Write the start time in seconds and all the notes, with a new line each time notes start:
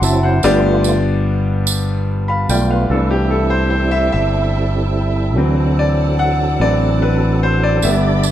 Already playing: F#5 A5 C6 D6
0.02 F#1 F#3 C4 E4 E5 A5, tambourine
0.23 C5 F#5
0.43 G1 G2 A3 B3 D4 F4 G4 D5, tambourine
0.84 tambourine
1.67 tambourine
2.28 F5 B5
2.49 B1 A3 B3 F4 D5 G5, tambourine
2.71 B4 F5
2.89 C2 E3 G3 A3 C4 D4 E4 A4 E5 G5 A5
3.11 G4
3.30 A4
3.50 C5
3.70 C5
3.91 E5
4.12 G1 E5
5.35 D2 E3 F#3 C4 D4 D5 F#5 A5
5.79 D5
6.19 F#5
6.60 A1 E3 F#3 C4 D5
7.02 B4
7.43 C5
7.63 D5
7.82 G1 D3 G3 B3 D5 E5 G5 B5 D6, tambourine
8.23 tambourine